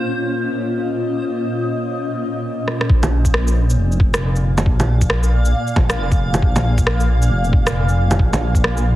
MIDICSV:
0, 0, Header, 1, 5, 480
1, 0, Start_track
1, 0, Key_signature, -5, "minor"
1, 0, Tempo, 441176
1, 1233, Time_signature, 4, 2, 24, 8
1, 9744, End_track
2, 0, Start_track
2, 0, Title_t, "Synth texture"
2, 0, Program_c, 0, 99
2, 0, Note_on_c, 0, 72, 71
2, 2673, Note_off_c, 0, 72, 0
2, 9744, End_track
3, 0, Start_track
3, 0, Title_t, "Ambient pad"
3, 0, Program_c, 1, 92
3, 0, Note_on_c, 1, 46, 86
3, 0, Note_on_c, 1, 58, 76
3, 0, Note_on_c, 1, 61, 74
3, 0, Note_on_c, 1, 65, 78
3, 0, Note_on_c, 1, 75, 73
3, 2673, Note_off_c, 1, 46, 0
3, 2673, Note_off_c, 1, 75, 0
3, 2677, Note_off_c, 1, 61, 0
3, 2678, Note_off_c, 1, 65, 0
3, 2680, Note_off_c, 1, 58, 0
3, 3163, Note_on_c, 1, 46, 86
3, 3548, Note_on_c, 1, 77, 73
3, 9744, Note_off_c, 1, 46, 0
3, 9744, Note_off_c, 1, 77, 0
3, 9744, End_track
4, 0, Start_track
4, 0, Title_t, "Detuned saw bass"
4, 0, Program_c, 2, 39
4, 3152, Note_on_c, 2, 34, 100
4, 4100, Note_off_c, 2, 34, 0
4, 4110, Note_on_c, 2, 29, 83
4, 5059, Note_off_c, 2, 29, 0
4, 5069, Note_on_c, 2, 34, 101
4, 6019, Note_off_c, 2, 34, 0
4, 6271, Note_on_c, 2, 34, 79
4, 6505, Note_on_c, 2, 29, 104
4, 6521, Note_off_c, 2, 34, 0
4, 6977, Note_off_c, 2, 29, 0
4, 6993, Note_on_c, 2, 34, 105
4, 7941, Note_off_c, 2, 34, 0
4, 7949, Note_on_c, 2, 29, 78
4, 8899, Note_off_c, 2, 29, 0
4, 8915, Note_on_c, 2, 34, 103
4, 9744, Note_off_c, 2, 34, 0
4, 9744, End_track
5, 0, Start_track
5, 0, Title_t, "Drums"
5, 2912, Note_on_c, 9, 37, 56
5, 3021, Note_off_c, 9, 37, 0
5, 3057, Note_on_c, 9, 37, 69
5, 3150, Note_on_c, 9, 36, 124
5, 3166, Note_off_c, 9, 37, 0
5, 3259, Note_off_c, 9, 36, 0
5, 3296, Note_on_c, 9, 61, 69
5, 3296, Note_on_c, 9, 82, 46
5, 3405, Note_off_c, 9, 61, 0
5, 3405, Note_off_c, 9, 82, 0
5, 3535, Note_on_c, 9, 36, 58
5, 3538, Note_on_c, 9, 82, 59
5, 3634, Note_on_c, 9, 37, 104
5, 3644, Note_off_c, 9, 36, 0
5, 3647, Note_off_c, 9, 82, 0
5, 3742, Note_off_c, 9, 37, 0
5, 3781, Note_on_c, 9, 82, 49
5, 3890, Note_off_c, 9, 82, 0
5, 4024, Note_on_c, 9, 82, 60
5, 4133, Note_off_c, 9, 82, 0
5, 4263, Note_on_c, 9, 82, 31
5, 4351, Note_on_c, 9, 36, 110
5, 4372, Note_off_c, 9, 82, 0
5, 4460, Note_off_c, 9, 36, 0
5, 4503, Note_on_c, 9, 37, 104
5, 4503, Note_on_c, 9, 82, 57
5, 4611, Note_off_c, 9, 37, 0
5, 4611, Note_off_c, 9, 82, 0
5, 4741, Note_on_c, 9, 82, 34
5, 4850, Note_off_c, 9, 82, 0
5, 4980, Note_on_c, 9, 61, 70
5, 4980, Note_on_c, 9, 82, 60
5, 5071, Note_on_c, 9, 36, 123
5, 5089, Note_off_c, 9, 61, 0
5, 5089, Note_off_c, 9, 82, 0
5, 5179, Note_off_c, 9, 36, 0
5, 5220, Note_on_c, 9, 61, 66
5, 5220, Note_on_c, 9, 82, 49
5, 5329, Note_off_c, 9, 61, 0
5, 5329, Note_off_c, 9, 82, 0
5, 5455, Note_on_c, 9, 82, 59
5, 5456, Note_on_c, 9, 36, 63
5, 5547, Note_on_c, 9, 37, 114
5, 5564, Note_off_c, 9, 82, 0
5, 5565, Note_off_c, 9, 36, 0
5, 5656, Note_off_c, 9, 37, 0
5, 5693, Note_on_c, 9, 82, 47
5, 5802, Note_off_c, 9, 82, 0
5, 5933, Note_on_c, 9, 82, 62
5, 6042, Note_off_c, 9, 82, 0
5, 6173, Note_on_c, 9, 82, 34
5, 6270, Note_on_c, 9, 36, 112
5, 6270, Note_on_c, 9, 61, 64
5, 6282, Note_off_c, 9, 82, 0
5, 6379, Note_off_c, 9, 36, 0
5, 6379, Note_off_c, 9, 61, 0
5, 6416, Note_on_c, 9, 37, 112
5, 6416, Note_on_c, 9, 82, 54
5, 6525, Note_off_c, 9, 37, 0
5, 6525, Note_off_c, 9, 82, 0
5, 6656, Note_on_c, 9, 36, 62
5, 6656, Note_on_c, 9, 82, 33
5, 6764, Note_off_c, 9, 36, 0
5, 6765, Note_off_c, 9, 82, 0
5, 6899, Note_on_c, 9, 61, 64
5, 6899, Note_on_c, 9, 82, 61
5, 6991, Note_on_c, 9, 36, 127
5, 7008, Note_off_c, 9, 61, 0
5, 7008, Note_off_c, 9, 82, 0
5, 7100, Note_off_c, 9, 36, 0
5, 7137, Note_on_c, 9, 61, 66
5, 7137, Note_on_c, 9, 82, 45
5, 7246, Note_off_c, 9, 61, 0
5, 7246, Note_off_c, 9, 82, 0
5, 7377, Note_on_c, 9, 36, 63
5, 7377, Note_on_c, 9, 82, 59
5, 7472, Note_on_c, 9, 37, 116
5, 7486, Note_off_c, 9, 36, 0
5, 7486, Note_off_c, 9, 82, 0
5, 7581, Note_off_c, 9, 37, 0
5, 7620, Note_on_c, 9, 82, 47
5, 7729, Note_off_c, 9, 82, 0
5, 7858, Note_on_c, 9, 82, 59
5, 7966, Note_off_c, 9, 82, 0
5, 8098, Note_on_c, 9, 82, 32
5, 8193, Note_on_c, 9, 36, 116
5, 8207, Note_off_c, 9, 82, 0
5, 8302, Note_off_c, 9, 36, 0
5, 8342, Note_on_c, 9, 37, 108
5, 8342, Note_on_c, 9, 82, 55
5, 8451, Note_off_c, 9, 37, 0
5, 8451, Note_off_c, 9, 82, 0
5, 8582, Note_on_c, 9, 82, 33
5, 8691, Note_off_c, 9, 82, 0
5, 8823, Note_on_c, 9, 61, 67
5, 8823, Note_on_c, 9, 82, 55
5, 8915, Note_on_c, 9, 36, 123
5, 8932, Note_off_c, 9, 61, 0
5, 8932, Note_off_c, 9, 82, 0
5, 9024, Note_off_c, 9, 36, 0
5, 9066, Note_on_c, 9, 61, 65
5, 9066, Note_on_c, 9, 82, 45
5, 9175, Note_off_c, 9, 61, 0
5, 9175, Note_off_c, 9, 82, 0
5, 9300, Note_on_c, 9, 36, 64
5, 9307, Note_on_c, 9, 82, 56
5, 9402, Note_on_c, 9, 37, 107
5, 9409, Note_off_c, 9, 36, 0
5, 9416, Note_off_c, 9, 82, 0
5, 9511, Note_off_c, 9, 37, 0
5, 9545, Note_on_c, 9, 82, 46
5, 9654, Note_off_c, 9, 82, 0
5, 9744, End_track
0, 0, End_of_file